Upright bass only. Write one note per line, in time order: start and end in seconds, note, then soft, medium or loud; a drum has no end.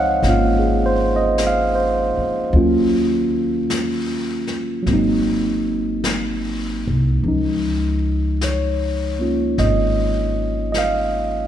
0.00 0.19 C#2 medium
0.22 2.14 G#1 medium
2.18 muted upright bass stroke soft
2.53 4.82 D#2 medium
4.87 6.83 G#1 medium
6.87 7.21 C2 medium
7.24 9.55 C#2 medium
9.58 11.47 G#1 medium